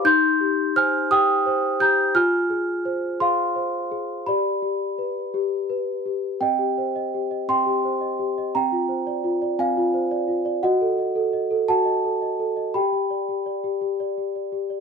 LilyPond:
\new Staff \with { instrumentName = "Celesta" } { \time 6/8 \key c \minor \tempo 4. = 57 << { <c''' g'''>4 <aes'' f'''>8 <g'' ees'''>4 <bes'' g'''>8 | <aes'' f'''>4. <f'' c'''>4. | <d'' b''>2~ <d'' b''>8 r8 | <ees'' g''>4. <g'' c'''>4. |
<g'' bes''>4. <f'' aes''>4. | <dis'' fis''>4. <fis'' a''>4. | <g'' b''>4. r4. | } \\ { ees'8 g'8 c''8 g'8 c''8 g'8 | f'8 aes'8 c''8 aes'8 c''8 aes'8 | g'8 g'8 b'8 g'8 b'8 g'8 | c'16 g'16 c''16 ees''16 g'16 ees''16 c'16 g'16 c''16 ees''16 g'16 ees''16 |
c'16 f'16 c''16 d''16 f'16 d''16 c'16 f'16 c''16 d''16 f'16 d''16 | fis'16 a'16 dis''16 a'16 dis''16 a'16 fis'16 dis''16 a'16 dis''16 a'16 dis''16 | g'16 g'16 d''16 g'16 d''16 g'16 g'16 d''16 g'16 d''16 g'16 d''16 | } >> }